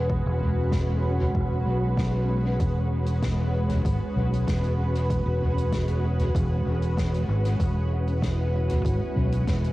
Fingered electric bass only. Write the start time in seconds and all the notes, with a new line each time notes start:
Already playing: E1
0.26 E1
1.35 E1
1.66 B1
2.60 E1
3.85 G#1
4.16 B1
4.48 E1
5.26 E1
6.35 E1
6.66 E1
7.28 G#1
7.60 E1
8.85 G#1
9.16 B1
9.47 E1